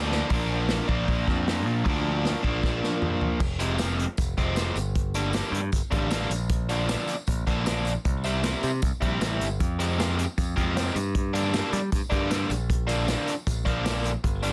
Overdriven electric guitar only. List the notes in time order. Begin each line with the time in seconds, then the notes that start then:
Already playing: D3 F3 A#3 D4
0.29 A#2 F3 A#3 D4
0.88 A#2 F3 A#3 D4
1.84 A#2 F3 A#3 D4
2.43 A#2 F3 A#3 D4
3.59 C3 F3 G#3 C4
3.79 C3 F3 G#3 C4
4.38 C3 F3 G#3 C4
4.56 C3 F3 G#3 C4
5.15 D3 G3 A#3 D4
5.34 D3 G3 A#3 D4
5.91 D3 G3 A#3 D4
6.11 D3 G3 A#3 D4
6.69 D3 F3 A#3 D4
6.88 D3 F3 A#3 D4
7.47 D3 F3 A#3 D4
7.66 D3 F3 A#3 D4
8.24 C3 G3 C4 E4
8.43 C3 G3 C4 E4
9.02 C3 G3 C4 E4
9.21 C3 G3 C4 E4
9.79 C3 F3 G#3 C4
9.98 C3 F3 G#3 C4
10.56 C3 F3 G#3 C4
10.76 C3 F3 G#3 C4
11.33 D3 G3 A#3 D4
11.53 D3 G3 A#3 D4
12.10 D3 G3 A#3 D4
12.29 D3 G3 A#3 D4
12.88 D3 F3 A#3 D4
13.07 D3 F3 A#3 D4
13.65 D3 F3 A#3 D4
13.84 D3 F3 A#3 D4
14.43 D3 G3 B3 D4